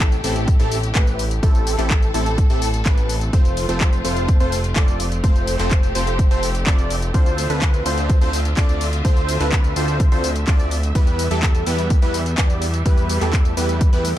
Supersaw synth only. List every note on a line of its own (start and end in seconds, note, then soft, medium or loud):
0.00 0.21 A3 medium
0.00 0.21 C4 medium
0.00 0.21 E4 medium
0.00 0.21 G4 medium
0.00 0.21 A4 medium
0.24 0.57 A3 medium
0.24 0.57 C4 medium
0.24 0.57 E4 medium
0.24 0.57 G4 medium
0.24 0.57 A4 medium
0.60 0.78 A3 medium
0.60 0.78 C4 medium
0.60 0.78 E4 medium
0.60 0.78 G4 medium
0.60 0.78 A4 loud
0.95 1.24 A3 medium
0.95 1.24 C4 medium
0.95 1.24 E4 medium
0.95 1.24 G4 medium
0.95 1.24 B4 medium
1.43 1.76 A3 medium
1.43 1.76 C4 medium
1.43 1.76 E4 medium
1.43 1.76 G4 medium
1.43 1.76 A4 loud
1.79 2.11 A3 medium
1.79 2.11 C4 medium
1.79 2.11 E4 medium
1.79 2.11 G4 medium
1.79 2.11 A4 medium
2.14 2.47 A3 medium
2.14 2.47 C4 medium
2.14 2.47 E4 medium
2.14 2.47 G4 medium
2.14 2.47 A4 medium
2.50 2.68 A3 medium
2.50 2.68 C4 medium
2.50 2.68 E4 medium
2.50 2.68 G4 medium
2.50 2.68 A4 loud
2.86 3.15 A3 medium
2.86 3.15 C4 medium
2.86 3.15 E4 medium
2.86 3.15 G4 medium
2.86 3.15 B4 medium
3.33 3.66 A3 medium
3.33 3.66 C4 medium
3.33 3.66 F4 medium
3.33 3.66 A4 medium
3.33 3.66 C5 loud
3.69 4.02 A3 medium
3.69 4.02 C4 medium
3.69 4.02 F4 medium
3.69 4.02 A4 medium
3.69 4.02 C5 medium
4.05 4.38 A3 medium
4.05 4.38 C4 medium
4.05 4.38 F4 medium
4.05 4.38 A4 medium
4.05 4.38 C5 medium
4.40 4.59 A3 medium
4.40 4.59 C4 medium
4.40 4.59 F4 medium
4.40 4.59 A4 medium
4.40 4.59 C5 loud
4.76 5.05 A3 medium
4.76 5.05 C4 medium
4.76 5.05 F4 medium
4.76 5.05 A4 medium
4.76 5.05 D5 medium
5.24 5.57 A3 medium
5.24 5.57 C4 medium
5.24 5.57 F4 medium
5.24 5.57 A4 medium
5.24 5.57 C5 loud
5.59 5.92 A3 medium
5.59 5.92 C4 medium
5.59 5.92 F4 medium
5.59 5.92 A4 medium
5.59 5.92 C5 medium
5.95 6.28 A3 medium
5.95 6.28 C4 medium
5.95 6.28 F4 medium
5.95 6.28 A4 medium
5.95 6.28 C5 medium
6.31 6.49 A3 medium
6.31 6.49 C4 medium
6.31 6.49 F4 medium
6.31 6.49 A4 medium
6.31 6.49 C5 loud
6.67 6.96 A3 medium
6.67 6.96 C4 medium
6.67 6.96 F4 medium
6.67 6.96 A4 medium
6.67 6.96 D5 medium
7.14 7.47 C4 medium
7.14 7.47 D4 medium
7.14 7.47 F4 medium
7.14 7.47 A4 medium
7.14 7.47 C5 loud
7.50 7.83 C4 medium
7.50 7.83 D4 medium
7.50 7.83 F4 medium
7.50 7.83 A4 medium
7.50 7.83 B4 medium
7.86 8.19 C4 medium
7.86 8.19 D4 medium
7.86 8.19 F4 medium
7.86 8.19 A4 medium
7.86 8.19 C5 medium
8.21 8.40 C4 medium
8.21 8.40 D4 medium
8.21 8.40 F4 medium
8.21 8.40 A4 medium
8.21 8.40 C5 loud
8.57 8.86 C4 medium
8.57 8.86 D4 medium
8.57 8.86 F4 medium
8.57 8.86 A4 medium
8.57 8.86 D5 medium
9.05 9.38 C4 medium
9.05 9.38 D4 medium
9.05 9.38 F4 medium
9.05 9.38 A4 medium
9.05 9.38 C5 loud
9.41 9.73 C4 medium
9.41 9.73 D4 medium
9.41 9.73 F4 medium
9.41 9.73 A4 medium
9.41 9.73 B4 medium
9.76 10.09 C4 medium
9.76 10.09 D4 medium
9.76 10.09 F4 medium
9.76 10.09 A4 medium
9.76 10.09 C5 medium
10.12 10.30 C4 medium
10.12 10.30 D4 medium
10.12 10.30 F4 medium
10.12 10.30 A4 medium
10.12 10.30 C5 loud
10.48 10.77 C4 medium
10.48 10.77 D4 medium
10.48 10.77 F4 medium
10.48 10.77 A4 medium
10.48 10.77 D5 medium
10.95 11.28 G3 medium
10.95 11.28 B3 medium
10.95 11.28 E4 medium
10.95 11.28 G4 medium
10.95 11.28 B4 loud
11.31 11.64 G3 medium
11.31 11.64 B3 medium
11.31 11.64 E4 medium
11.31 11.64 G4 medium
11.31 11.64 A4 loud
11.67 12.00 G3 medium
11.67 12.00 B3 medium
11.67 12.00 E4 medium
11.67 12.00 G4 medium
11.67 12.00 B4 loud
12.02 12.21 G3 medium
12.02 12.21 B3 medium
12.02 12.21 E4 medium
12.02 12.21 G4 medium
12.02 12.21 B4 loud
12.38 12.67 G3 medium
12.38 12.67 B3 medium
12.38 12.67 E4 medium
12.38 12.67 G4 medium
12.38 12.67 D5 medium
12.86 13.19 G3 medium
12.86 13.19 B3 medium
12.86 13.19 E4 medium
12.86 13.19 G4 medium
12.86 13.19 B4 loud
13.21 13.54 G3 medium
13.21 13.54 B3 medium
13.21 13.54 E4 medium
13.21 13.54 G4 medium
13.21 13.54 A4 medium
13.57 13.90 G3 medium
13.57 13.90 B3 medium
13.57 13.90 E4 medium
13.57 13.90 G4 medium
13.57 13.90 B4 medium
13.93 14.11 G3 medium
13.93 14.11 B3 medium
13.93 14.11 E4 medium
13.93 14.11 G4 medium
13.93 14.11 B4 loud